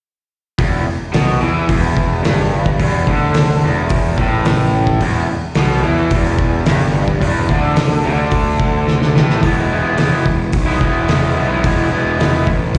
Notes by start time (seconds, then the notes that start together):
0.59 E1 E2, kick, open hi-hat
0.87 muted picked electric bass stroke, muted overdriven electric guitar stroke
1.13 B1 B2, snare, open hi-hat
1.41 E2 E3
1.68 E1 E2, kick, open hi-hat
1.97 kick
2.23 G1 G2, snare, open hi-hat
2.66 kick
2.79 E1 E2, kick, open hi-hat
3.07 D2 D3, kick
3.34 snare, open hi-hat
3.64 E1 E2
3.89 kick, open hi-hat
4.18 A1 A2, kick
4.45 snare, open hi-hat
4.87 kick
5.01 E1 E2, kick, open hi-hat
5.30 muted overdriven electric guitar stroke, muted picked electric bass stroke
5.55 B1 B2, snare, open hi-hat
5.83 E2 E3
6.11 E1 E2, kick, open hi-hat
6.39 kick
6.66 G1 G2, snare, open hi-hat
7.08 kick
7.21 E1 E2, kick, open hi-hat
7.49 D2 D3, kick
7.76 snare, open hi-hat
8.04 D2 D3
8.31 kick, open hi-hat
8.60 kick
8.88 snare
9.02 snare
9.16 A1 A2, snare
9.30 snare
9.42 E1 E3 G#3 B3 E4, kick, open hi-hat
9.70 E1 E3 G#3 B3
9.74 E4
9.96 E1 E3 G#3 B3 E4, snare, open hi-hat
10.11 G#3 B3 E4
10.25 E1, muted overdriven electric guitar stroke, kick
10.52 B1, kick, open hi-hat
10.66 G#3 B3 E4
10.80 E1 E3 G#3 B3 E4, kick
11.07 E1 E3 G#3 B3 E4, snare, open hi-hat
11.21 G#3 B3 E4
11.35 B1 E3 G#3 B3 E4
11.49 G#3 B3 E4
11.63 E1 E3 G#3 B3 E4, kick, open hi-hat
11.91 E1 E3 G#3 B3 E4
12.17 E1 E3 G#3 B3 E4, snare, open hi-hat
12.33 G#3 B3 E4
12.47 A1, muted overdriven electric guitar stroke, kick
12.75 E1, kick, open hi-hat